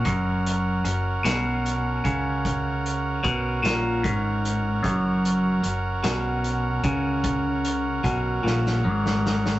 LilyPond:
<<
  \new Staff \with { instrumentName = "Transistor combo organ" } { \time 6/8 \key ges \major \tempo 4. = 50 <des' ges' bes'>2.~ | <des' ges' bes'>2.~ | <des' ges' bes'>2.~ | <des' ges' bes'>2. | }
  \new Staff \with { instrumentName = "Clean electric guitar" } { \clef bass \time 6/8 \key ges \major ges,4 ges,8 ces4 des8~ | des4 ces8 bes,8 aes,4 | ges,4 ges,8 ces4 des8~ | des4 ces8 bes,8 aes,4 | }
  \new Staff \with { instrumentName = "Fingered electric bass" } { \clef bass \time 6/8 \key ges \major ges,,4 ges,,8 ces,4 des,8~ | des,4 ces,8 bes,,8 aes,,4 | ges,,4 ges,,8 ces,4 des,8~ | des,4 ces,8 bes,,8 aes,,4 | }
  \new DrumStaff \with { instrumentName = "Drums" } \drummode { \time 6/8 <hh bd>8 hh8 hh8 <hh sn>8 hh8 <hh bd>8 | <hh bd>8 hh8 <hh bd>8 <hh sn>8 <hh bd>8 hh8 | <hh bd>8 hh8 hh8 <hh sn>8 hh8 <hh bd>8 | <hh bd>8 hh8 <hh bd>8 sn16 sn8 sn16 sn16 sn16 | }
>>